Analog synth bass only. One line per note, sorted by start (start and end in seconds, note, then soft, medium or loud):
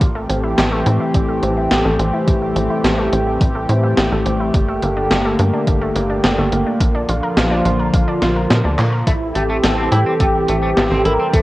0.01 0.26 A1 loud
0.30 0.55 A1 medium
0.58 0.83 A1 medium
0.86 0.99 A2 loud
1.14 1.40 A1 medium
1.42 1.68 A1 loud
1.71 1.84 A1 medium
1.85 1.98 A1 medium
1.99 2.12 A1 medium
2.28 2.53 A1 medium
2.56 2.68 A1 loud
2.84 3.09 A1 medium
3.12 3.38 A1 medium
3.41 3.66 A1 loud
3.69 3.94 A2 loud
3.97 4.10 A1 medium
4.12 4.24 A1 medium
4.26 4.51 A1 medium
4.54 4.79 G1 loud
4.83 5.08 G1 medium
5.11 5.36 G1 medium
5.39 5.52 G2 medium
5.67 5.92 G1 medium
5.95 6.21 G1 loud
6.24 6.37 G1 medium
6.38 6.51 G1 medium
6.52 6.65 G1 medium
6.80 7.06 A#1 medium
7.09 7.21 A#1 medium
7.37 7.62 A#1 medium
7.65 7.91 A#1 medium
7.94 8.06 A#1 medium
8.22 8.47 A#1 medium
8.50 8.63 A#2 medium
8.65 8.77 D2 medium
8.79 9.04 A#2 medium
9.07 9.32 A1 loud
9.35 9.60 A1 medium
9.64 9.89 A1 medium
9.92 10.04 A2 loud
10.20 10.45 A1 medium
10.49 10.74 A1 loud
10.77 10.89 A1 medium
10.91 11.03 A1 medium
11.05 11.18 A1 medium
11.33 11.42 A1 medium